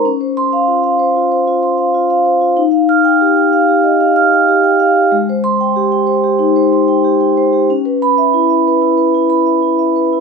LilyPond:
\new Staff \with { instrumentName = "Vibraphone" } { \time 4/4 \key cis \dorian \tempo 4 = 94 << { r8 bis''8 r2. | \key dis \phrygian r8 eis'''8 r2. | r8 bis''8 r2. | r8 b''8 r2. | } \\ { cis'16 bis'8 eis''16 eis'16 eis''16 bis'16 eis'16 bis'16 eis'16 bis''16 eis''16 eis'16 eis''16 bis'16 eis'16 | dis'16 eis''8 g''16 g'16 g''16 eis''16 g'16 dis''16 eis''16 eis'''16 g''16 g'16 g''16 eis''16 g'16 | gis16 bis'8 g''16 g'16 g''16 bis'16 g'16 dis'16 bis'16 bis''16 g''16 g'16 g''16 bis'16 g'16 | cis'16 b'8 e''16 e'16 e''16 b'16 e'16 b'16 e'16 b''16 e''16 e'16 e''16 b'16 e'16 | } >> }